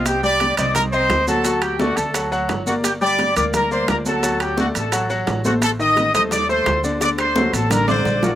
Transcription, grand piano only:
\new Staff \with { instrumentName = "Grand piano" } { \time 4/4 \key d \phrygian \tempo 4 = 173 <c' c'' ees''>8 <g g' g''>4 <c' c'' ees''>4 <c' c'' ees''>4 <fis fis' fis''>8 | <fis fis' fis''>4 <a a' d''>4 <fis fis' fis''>8 <fis fis' fis''>4 <bes bes' d''>8~ | <bes bes' d''>8 <g g' g''>4 <bes bes' d''>4 <bes bes' d''>4 <fis fis' fis''>8 | <fis fis' fis''>4 <a a' d''>4 <fis fis' fis''>8 <fis fis' fis''>4 <a a' c''>8~ |
<a a' c''>8 <ees ees' ees''>4 <a a' c''>4 <a a' c''>4 <d d' d''>8 | <d d' d''>4 <fis fis' a'>4 <d d' d''>8 <d d' d''>4 <f f' bes'>8 | }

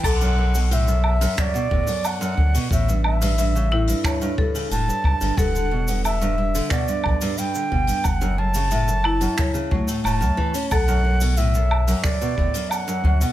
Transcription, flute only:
\new Staff \with { instrumentName = "Flute" } { \time 4/4 \key b \minor \tempo 4 = 90 fis''4 e''4 d''4 fis''4 | e''8 e''2 r8 a''4 | fis''4 e''4 d''4 g''4 | fis''8 a''2 r8 a''4 |
fis''4 e''4 d''4 fis''4 | }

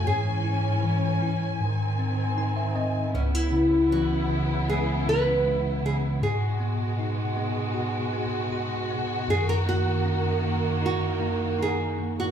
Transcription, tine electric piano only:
<<
  \new Staff \with { instrumentName = "Tine electric piano" } { \time 4/4 \key cis \minor \tempo 4 = 78 r2. gis''16 e''16 dis''8 | r1 | r1 | r1 | }
  \new Staff \with { instrumentName = "Tine electric piano" } { \time 4/4 \key cis \minor gis,8 e'8 e8 e'8 gis,8 bis8 dis'8 bis8 | cis,8 cis8 e8 cis8 gis8 cis8 gis8 cis8 | gis,8 b8 dis'8 b8 fis'8 b8 fis'8 b8 | fis,8 ais8 cis'8 ais8 dis'8 ais8 dis'8 ais8 | }
>>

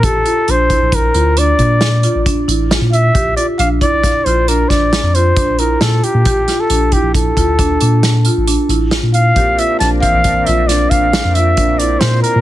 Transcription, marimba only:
\new Staff \with { instrumentName = "Marimba" } { \time 7/4 \key bes \lydian \tempo 4 = 135 g'8 f'8 d'8 e'4 f'8 d'8 d'4 f'8 d'8 e'8 f'4 | g'8 f'8 d'8 e'4 f'8 d'8 d'4 f'8 d'8 e'8 f'4 | g'8 f'8 d'8 e'4 f'8 d'8 d'4 f'8 d'8 e'8 f'4 | g'8 f'8 d'8 e4 f'8 d'8 d'4 f'8 d'8 e'8 f'4 | }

